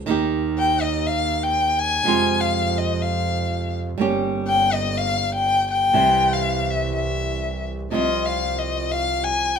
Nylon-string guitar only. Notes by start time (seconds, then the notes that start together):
0.06 D#3 A#3 D#4
0.10 G4
2.04 C3 F3 G#3 C4
2.08 F4
3.98 G3 A#3 C#4 G4
5.93 C3 E3 G3 C4
7.91 C3 F3 G3 C4 F4